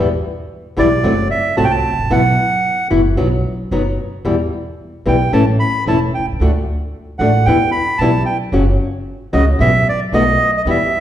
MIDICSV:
0, 0, Header, 1, 4, 480
1, 0, Start_track
1, 0, Key_signature, 1, "minor"
1, 0, Tempo, 534283
1, 1902, Time_signature, 4, 2, 24, 8
1, 9884, End_track
2, 0, Start_track
2, 0, Title_t, "Bandoneon"
2, 0, Program_c, 0, 23
2, 709, Note_on_c, 0, 74, 74
2, 1152, Note_off_c, 0, 74, 0
2, 1174, Note_on_c, 0, 76, 81
2, 1401, Note_off_c, 0, 76, 0
2, 1412, Note_on_c, 0, 81, 83
2, 1477, Note_on_c, 0, 79, 74
2, 1483, Note_off_c, 0, 81, 0
2, 1537, Note_on_c, 0, 81, 77
2, 1545, Note_off_c, 0, 79, 0
2, 1904, Note_on_c, 0, 78, 74
2, 1906, Note_off_c, 0, 81, 0
2, 2586, Note_off_c, 0, 78, 0
2, 4563, Note_on_c, 0, 79, 58
2, 4779, Note_off_c, 0, 79, 0
2, 4793, Note_on_c, 0, 81, 72
2, 4900, Note_off_c, 0, 81, 0
2, 5028, Note_on_c, 0, 83, 80
2, 5251, Note_off_c, 0, 83, 0
2, 5282, Note_on_c, 0, 81, 70
2, 5387, Note_off_c, 0, 81, 0
2, 5520, Note_on_c, 0, 79, 48
2, 5625, Note_off_c, 0, 79, 0
2, 6457, Note_on_c, 0, 78, 66
2, 6696, Note_on_c, 0, 79, 74
2, 6708, Note_off_c, 0, 78, 0
2, 6923, Note_off_c, 0, 79, 0
2, 6932, Note_on_c, 0, 83, 78
2, 7170, Note_on_c, 0, 81, 75
2, 7185, Note_off_c, 0, 83, 0
2, 7399, Note_off_c, 0, 81, 0
2, 7416, Note_on_c, 0, 79, 53
2, 7525, Note_off_c, 0, 79, 0
2, 8386, Note_on_c, 0, 75, 80
2, 8493, Note_off_c, 0, 75, 0
2, 8631, Note_on_c, 0, 76, 93
2, 8873, Note_off_c, 0, 76, 0
2, 8883, Note_on_c, 0, 74, 77
2, 8986, Note_off_c, 0, 74, 0
2, 9112, Note_on_c, 0, 75, 88
2, 9442, Note_off_c, 0, 75, 0
2, 9498, Note_on_c, 0, 75, 69
2, 9544, Note_off_c, 0, 75, 0
2, 9613, Note_on_c, 0, 76, 86
2, 9884, Note_off_c, 0, 76, 0
2, 9884, End_track
3, 0, Start_track
3, 0, Title_t, "Nylon-string guitar"
3, 0, Program_c, 1, 24
3, 688, Note_on_c, 1, 47, 65
3, 694, Note_on_c, 1, 52, 70
3, 697, Note_on_c, 1, 59, 68
3, 698, Note_on_c, 1, 55, 60
3, 703, Note_on_c, 1, 64, 79
3, 777, Note_off_c, 1, 47, 0
3, 780, Note_off_c, 1, 52, 0
3, 781, Note_off_c, 1, 59, 0
3, 782, Note_off_c, 1, 55, 0
3, 784, Note_off_c, 1, 64, 0
3, 930, Note_on_c, 1, 54, 69
3, 937, Note_on_c, 1, 57, 72
3, 941, Note_on_c, 1, 60, 71
3, 941, Note_on_c, 1, 66, 76
3, 1017, Note_off_c, 1, 54, 0
3, 1021, Note_off_c, 1, 57, 0
3, 1023, Note_off_c, 1, 60, 0
3, 1023, Note_off_c, 1, 66, 0
3, 1409, Note_on_c, 1, 54, 67
3, 1410, Note_on_c, 1, 57, 71
3, 1416, Note_on_c, 1, 66, 75
3, 1419, Note_on_c, 1, 60, 79
3, 1497, Note_off_c, 1, 54, 0
3, 1497, Note_off_c, 1, 57, 0
3, 1501, Note_off_c, 1, 66, 0
3, 1502, Note_off_c, 1, 60, 0
3, 1892, Note_on_c, 1, 64, 67
3, 1894, Note_on_c, 1, 47, 61
3, 1894, Note_on_c, 1, 52, 64
3, 1894, Note_on_c, 1, 59, 74
3, 1902, Note_on_c, 1, 66, 65
3, 1978, Note_off_c, 1, 64, 0
3, 1979, Note_off_c, 1, 47, 0
3, 1979, Note_off_c, 1, 52, 0
3, 1979, Note_off_c, 1, 59, 0
3, 1983, Note_off_c, 1, 66, 0
3, 2609, Note_on_c, 1, 52, 57
3, 2610, Note_on_c, 1, 47, 59
3, 2612, Note_on_c, 1, 64, 71
3, 2617, Note_on_c, 1, 59, 66
3, 2617, Note_on_c, 1, 66, 63
3, 2696, Note_off_c, 1, 47, 0
3, 2696, Note_off_c, 1, 52, 0
3, 2697, Note_off_c, 1, 64, 0
3, 2700, Note_off_c, 1, 59, 0
3, 2700, Note_off_c, 1, 66, 0
3, 2849, Note_on_c, 1, 47, 65
3, 2849, Note_on_c, 1, 59, 64
3, 2852, Note_on_c, 1, 54, 71
3, 2856, Note_on_c, 1, 66, 66
3, 2858, Note_on_c, 1, 63, 73
3, 2936, Note_off_c, 1, 47, 0
3, 2936, Note_off_c, 1, 59, 0
3, 2937, Note_off_c, 1, 54, 0
3, 2940, Note_off_c, 1, 66, 0
3, 2941, Note_off_c, 1, 63, 0
3, 3341, Note_on_c, 1, 47, 62
3, 3341, Note_on_c, 1, 54, 65
3, 3344, Note_on_c, 1, 63, 69
3, 3345, Note_on_c, 1, 66, 69
3, 3348, Note_on_c, 1, 59, 65
3, 3423, Note_off_c, 1, 54, 0
3, 3424, Note_off_c, 1, 47, 0
3, 3425, Note_off_c, 1, 63, 0
3, 3426, Note_off_c, 1, 66, 0
3, 3427, Note_off_c, 1, 59, 0
3, 3815, Note_on_c, 1, 47, 60
3, 3817, Note_on_c, 1, 52, 57
3, 3821, Note_on_c, 1, 59, 60
3, 3821, Note_on_c, 1, 64, 63
3, 3823, Note_on_c, 1, 55, 63
3, 3902, Note_off_c, 1, 47, 0
3, 3903, Note_off_c, 1, 52, 0
3, 3905, Note_off_c, 1, 59, 0
3, 3905, Note_off_c, 1, 64, 0
3, 3906, Note_off_c, 1, 55, 0
3, 4542, Note_on_c, 1, 47, 55
3, 4548, Note_on_c, 1, 52, 62
3, 4549, Note_on_c, 1, 55, 66
3, 4549, Note_on_c, 1, 59, 57
3, 4554, Note_on_c, 1, 64, 62
3, 4626, Note_off_c, 1, 47, 0
3, 4629, Note_off_c, 1, 52, 0
3, 4630, Note_off_c, 1, 55, 0
3, 4630, Note_off_c, 1, 59, 0
3, 4632, Note_off_c, 1, 64, 0
3, 4787, Note_on_c, 1, 52, 73
3, 4790, Note_on_c, 1, 57, 73
3, 4790, Note_on_c, 1, 61, 77
3, 4796, Note_on_c, 1, 64, 66
3, 4869, Note_off_c, 1, 52, 0
3, 4870, Note_off_c, 1, 57, 0
3, 4870, Note_off_c, 1, 61, 0
3, 4873, Note_off_c, 1, 64, 0
3, 5277, Note_on_c, 1, 52, 57
3, 5277, Note_on_c, 1, 57, 62
3, 5278, Note_on_c, 1, 61, 63
3, 5283, Note_on_c, 1, 64, 79
3, 5353, Note_off_c, 1, 52, 0
3, 5354, Note_off_c, 1, 57, 0
3, 5354, Note_off_c, 1, 61, 0
3, 5357, Note_off_c, 1, 64, 0
3, 5760, Note_on_c, 1, 50, 60
3, 5761, Note_on_c, 1, 57, 74
3, 5768, Note_on_c, 1, 62, 70
3, 5770, Note_on_c, 1, 66, 72
3, 5835, Note_off_c, 1, 50, 0
3, 5835, Note_off_c, 1, 57, 0
3, 5839, Note_off_c, 1, 62, 0
3, 5840, Note_off_c, 1, 66, 0
3, 6468, Note_on_c, 1, 50, 60
3, 6476, Note_on_c, 1, 57, 63
3, 6479, Note_on_c, 1, 62, 62
3, 6479, Note_on_c, 1, 66, 60
3, 6548, Note_off_c, 1, 50, 0
3, 6552, Note_off_c, 1, 57, 0
3, 6553, Note_off_c, 1, 62, 0
3, 6553, Note_off_c, 1, 66, 0
3, 6712, Note_on_c, 1, 47, 62
3, 6715, Note_on_c, 1, 52, 76
3, 6715, Note_on_c, 1, 55, 69
3, 6719, Note_on_c, 1, 59, 67
3, 6724, Note_on_c, 1, 64, 78
3, 6790, Note_off_c, 1, 47, 0
3, 6791, Note_off_c, 1, 52, 0
3, 6791, Note_off_c, 1, 55, 0
3, 6793, Note_off_c, 1, 59, 0
3, 6796, Note_off_c, 1, 64, 0
3, 7195, Note_on_c, 1, 47, 72
3, 7198, Note_on_c, 1, 52, 72
3, 7199, Note_on_c, 1, 59, 72
3, 7202, Note_on_c, 1, 55, 77
3, 7205, Note_on_c, 1, 64, 75
3, 7270, Note_off_c, 1, 47, 0
3, 7272, Note_off_c, 1, 52, 0
3, 7272, Note_off_c, 1, 59, 0
3, 7274, Note_off_c, 1, 55, 0
3, 7275, Note_off_c, 1, 64, 0
3, 7660, Note_on_c, 1, 49, 64
3, 7662, Note_on_c, 1, 58, 67
3, 7665, Note_on_c, 1, 54, 64
3, 7665, Note_on_c, 1, 61, 65
3, 7672, Note_on_c, 1, 66, 72
3, 7742, Note_off_c, 1, 49, 0
3, 7743, Note_off_c, 1, 58, 0
3, 7745, Note_off_c, 1, 54, 0
3, 7745, Note_off_c, 1, 61, 0
3, 7748, Note_off_c, 1, 66, 0
3, 8382, Note_on_c, 1, 54, 68
3, 8385, Note_on_c, 1, 49, 62
3, 8388, Note_on_c, 1, 61, 71
3, 8389, Note_on_c, 1, 58, 68
3, 8393, Note_on_c, 1, 66, 68
3, 8463, Note_off_c, 1, 54, 0
3, 8464, Note_off_c, 1, 49, 0
3, 8466, Note_off_c, 1, 61, 0
3, 8467, Note_off_c, 1, 58, 0
3, 8469, Note_off_c, 1, 66, 0
3, 8626, Note_on_c, 1, 47, 65
3, 8630, Note_on_c, 1, 52, 77
3, 8633, Note_on_c, 1, 55, 76
3, 8633, Note_on_c, 1, 59, 84
3, 8635, Note_on_c, 1, 64, 79
3, 8705, Note_off_c, 1, 47, 0
3, 8707, Note_off_c, 1, 52, 0
3, 8709, Note_off_c, 1, 55, 0
3, 8709, Note_off_c, 1, 59, 0
3, 8709, Note_off_c, 1, 64, 0
3, 9103, Note_on_c, 1, 51, 66
3, 9108, Note_on_c, 1, 57, 82
3, 9109, Note_on_c, 1, 47, 75
3, 9112, Note_on_c, 1, 66, 72
3, 9116, Note_on_c, 1, 59, 73
3, 9183, Note_off_c, 1, 51, 0
3, 9186, Note_off_c, 1, 57, 0
3, 9187, Note_off_c, 1, 47, 0
3, 9188, Note_off_c, 1, 66, 0
3, 9190, Note_off_c, 1, 59, 0
3, 9582, Note_on_c, 1, 47, 63
3, 9585, Note_on_c, 1, 52, 64
3, 9586, Note_on_c, 1, 55, 73
3, 9588, Note_on_c, 1, 59, 78
3, 9594, Note_on_c, 1, 64, 64
3, 9664, Note_off_c, 1, 47, 0
3, 9665, Note_off_c, 1, 52, 0
3, 9666, Note_off_c, 1, 55, 0
3, 9667, Note_off_c, 1, 59, 0
3, 9670, Note_off_c, 1, 64, 0
3, 9884, End_track
4, 0, Start_track
4, 0, Title_t, "Upright bass"
4, 0, Program_c, 2, 32
4, 0, Note_on_c, 2, 40, 71
4, 184, Note_off_c, 2, 40, 0
4, 695, Note_on_c, 2, 35, 75
4, 900, Note_off_c, 2, 35, 0
4, 935, Note_on_c, 2, 30, 85
4, 1140, Note_off_c, 2, 30, 0
4, 1421, Note_on_c, 2, 36, 75
4, 1623, Note_off_c, 2, 36, 0
4, 1722, Note_on_c, 2, 32, 41
4, 1777, Note_off_c, 2, 32, 0
4, 1783, Note_on_c, 2, 33, 49
4, 1830, Note_off_c, 2, 33, 0
4, 1835, Note_on_c, 2, 34, 56
4, 1882, Note_off_c, 2, 34, 0
4, 1887, Note_on_c, 2, 35, 79
4, 2096, Note_off_c, 2, 35, 0
4, 2614, Note_on_c, 2, 30, 77
4, 2819, Note_off_c, 2, 30, 0
4, 2859, Note_on_c, 2, 35, 76
4, 3062, Note_off_c, 2, 35, 0
4, 3335, Note_on_c, 2, 30, 73
4, 3541, Note_off_c, 2, 30, 0
4, 3815, Note_on_c, 2, 40, 65
4, 4022, Note_off_c, 2, 40, 0
4, 4544, Note_on_c, 2, 35, 75
4, 4747, Note_off_c, 2, 35, 0
4, 4782, Note_on_c, 2, 33, 79
4, 4987, Note_off_c, 2, 33, 0
4, 5263, Note_on_c, 2, 28, 75
4, 5467, Note_off_c, 2, 28, 0
4, 5559, Note_on_c, 2, 35, 41
4, 5618, Note_off_c, 2, 35, 0
4, 5624, Note_on_c, 2, 36, 52
4, 5674, Note_off_c, 2, 36, 0
4, 5679, Note_on_c, 2, 37, 58
4, 5741, Note_off_c, 2, 37, 0
4, 5746, Note_on_c, 2, 38, 73
4, 5948, Note_off_c, 2, 38, 0
4, 6460, Note_on_c, 2, 33, 80
4, 6664, Note_off_c, 2, 33, 0
4, 6704, Note_on_c, 2, 40, 77
4, 6905, Note_off_c, 2, 40, 0
4, 7177, Note_on_c, 2, 35, 80
4, 7381, Note_off_c, 2, 35, 0
4, 7655, Note_on_c, 2, 30, 77
4, 7859, Note_off_c, 2, 30, 0
4, 8382, Note_on_c, 2, 37, 91
4, 8583, Note_off_c, 2, 37, 0
4, 8615, Note_on_c, 2, 35, 88
4, 8820, Note_off_c, 2, 35, 0
4, 9095, Note_on_c, 2, 35, 78
4, 9300, Note_off_c, 2, 35, 0
4, 9571, Note_on_c, 2, 40, 75
4, 9779, Note_off_c, 2, 40, 0
4, 9884, End_track
0, 0, End_of_file